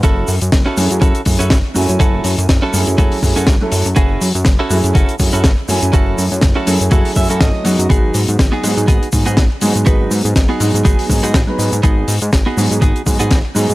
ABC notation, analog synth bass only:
X:1
M:4/4
L:1/16
Q:"Swing 16ths" 1/4=122
K:F#dor
V:1 name="Analog synth bass" clef=bass
F,,,2 F,, F,, F,,, z F,, F,, F,,, z F,, F,, F,,, z F,, F,, | F,,,2 F,, F,, F,,, z F,, F,, F,,, z F,, F,, F,,, z F,, F,, | F,,,2 F,, F,, F,,, z F,, F,, F,,, z F,, F,, F,,, z F,, F,, | F,,,2 F,, F,, F,,, z F,, F,, F,,, z F,, F,, F,,, z F,, F,, |
G,,,2 G,, G,, G,,, z G,, G,, G,,, z G,, G,, G,,, z G,, G,, | G,,,2 G,, G,, G,,, z G,, G,, G,,, z G,, G,, G,,, z G,, G,, | G,,,2 G,, G,, G,,, z G,, G,, G,,, z G,, G,, G,,, z G,, G,, |]